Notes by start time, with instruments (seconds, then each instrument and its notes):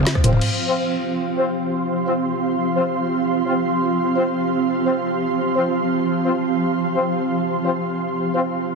Already playing: synth drone F3 C4 C5, ambient pad C4 F4 F5 F6
0.07 snare, closed hi-hat, mid tom
0.15 kick, cross-stick
0.24 wobble bass D#1, brass ensemble C4 F4 C5, closed hi-hat, mid tom
0.33 mid tom
0.41 synth drone F3 C4 G4, ambient pad C4, crash
0.47 ambient pad F4
0.61 ambient pad F5 C6
0.68 brass ensemble C4 F4 C5
1.37 brass ensemble C4 F4 C5
2.07 brass ensemble C4 F4 C5
2.77 brass ensemble C4 F4 C5
3.47 brass ensemble C4 F4 C5
4.16 brass ensemble C4 F4 C5
4.86 brass ensemble C4 F4 C5
5.56 brass ensemble C4 F4 C5
6.26 brass ensemble C4 F4 C5
6.95 brass ensemble C4 F4 C5
7.65 brass ensemble C4 F4 C5
8.35 brass ensemble C4 F4 C5